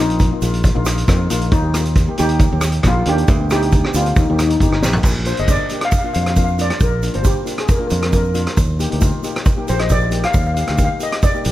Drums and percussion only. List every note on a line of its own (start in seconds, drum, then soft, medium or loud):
0.10 closed hi-hat medium
0.19 kick medium
0.19 closed hi-hat medium
0.19 shaker medium
0.42 closed hi-hat medium
0.42 shaker loud
0.54 closed hi-hat medium
0.64 kick loud
0.64 closed hi-hat medium
0.64 shaker medium
0.85 cross-stick medium
0.85 closed hi-hat loud
0.85 shaker loud
0.98 closed hi-hat medium
1.08 kick medium
1.08 cross-stick medium
1.08 closed hi-hat medium
1.08 shaker medium
1.30 closed hi-hat loud
1.30 shaker medium
1.41 closed hi-hat medium
1.51 kick loud
1.51 closed hi-hat medium
1.51 shaker medium
1.74 cross-stick medium
1.74 closed hi-hat medium
1.74 shaker medium
1.85 closed hi-hat medium
1.95 kick medium
1.95 closed hi-hat medium
1.95 shaker medium
2.18 closed hi-hat medium
2.18 shaker medium
2.29 closed hi-hat medium
2.39 kick loud
2.39 closed hi-hat medium
2.39 shaker medium
2.61 cross-stick loud
2.61 closed hi-hat medium
2.61 shaker medium
2.72 closed hi-hat medium
2.83 kick medium
2.83 cross-stick medium
2.83 closed hi-hat medium
2.83 shaker medium
3.06 closed hi-hat medium
3.18 closed hi-hat medium
3.28 kick loud
3.28 closed hi-hat medium
3.28 shaker medium
3.50 cross-stick medium
3.50 closed hi-hat medium
3.50 shaker medium
3.62 closed hi-hat medium
3.72 kick loud
3.72 closed hi-hat medium
3.72 shaker medium
3.84 cross-stick medium
3.94 closed hi-hat medium
3.94 shaker loud
4.06 closed hi-hat medium
4.16 kick loud
4.16 closed hi-hat medium
4.16 shaker medium
4.39 cross-stick medium
4.39 closed hi-hat medium
4.39 shaker medium
4.50 closed hi-hat medium
4.50 shaker soft
4.60 kick medium
4.60 closed hi-hat medium
4.60 shaker medium
4.72 cross-stick medium
4.82 snare medium
4.82 shaker medium
4.93 floor tom medium
5.03 kick loud
5.03 crash loud
5.03 shaker loud
5.25 closed hi-hat medium
5.25 shaker medium
5.37 closed hi-hat medium
5.37 shaker soft
5.47 kick medium
5.47 closed hi-hat medium
5.47 shaker loud
5.69 closed hi-hat medium
5.69 shaker medium
5.81 cross-stick medium
5.81 closed hi-hat medium
5.91 kick loud
5.91 closed hi-hat medium
5.91 shaker medium
6.14 closed hi-hat medium
6.14 shaker medium
6.26 cross-stick medium
6.26 closed hi-hat medium
6.36 kick medium
6.36 closed hi-hat medium
6.36 shaker medium
6.48 shaker soft
6.59 closed hi-hat medium
6.59 shaker medium
6.70 cross-stick medium
6.70 closed hi-hat soft
6.80 kick loud
6.80 closed hi-hat medium
6.80 shaker medium
7.02 closed hi-hat medium
7.02 shaker medium
7.14 closed hi-hat medium
7.14 shaker soft
7.24 kick medium
7.24 closed hi-hat medium
7.24 shaker loud
7.47 closed hi-hat medium
7.47 shaker medium
7.58 cross-stick medium
7.58 closed hi-hat medium
7.68 kick loud
7.68 closed hi-hat medium
7.68 shaker medium
7.90 closed hi-hat medium
7.90 shaker medium
8.02 cross-stick medium
8.02 closed hi-hat medium
8.12 kick medium
8.12 closed hi-hat medium
8.12 shaker medium
8.24 shaker soft
8.34 closed hi-hat medium
8.34 shaker medium
8.47 cross-stick medium
8.47 closed hi-hat medium
8.57 kick loud
8.57 closed hi-hat medium
8.57 shaker medium
8.80 closed hi-hat medium
8.80 shaker medium
8.92 closed hi-hat medium
9.01 kick medium
9.01 closed hi-hat medium
9.01 shaker medium
9.23 closed hi-hat medium
9.23 shaker medium
9.36 cross-stick medium
9.36 closed hi-hat medium
9.45 kick loud
9.45 closed hi-hat medium
9.45 shaker medium
9.68 closed hi-hat medium
9.68 shaker medium
9.79 cross-stick medium
9.79 closed hi-hat medium
9.89 kick medium
9.89 closed hi-hat medium
9.89 shaker medium
10.11 closed hi-hat medium
10.11 shaker medium
10.23 cross-stick medium
10.23 closed hi-hat medium
10.33 kick loud
10.33 closed hi-hat medium
10.33 shaker medium
10.46 shaker soft
10.57 closed hi-hat medium
10.57 shaker medium
10.67 cross-stick medium
10.67 closed hi-hat medium
10.67 shaker soft
10.78 kick medium
10.78 closed hi-hat medium
10.78 shaker medium
11.00 closed hi-hat medium
11.00 shaker medium
11.12 cross-stick medium
11.12 closed hi-hat medium
11.22 kick loud
11.22 closed hi-hat medium
11.22 shaker medium
11.35 shaker soft
11.44 closed hi-hat medium
11.44 shaker medium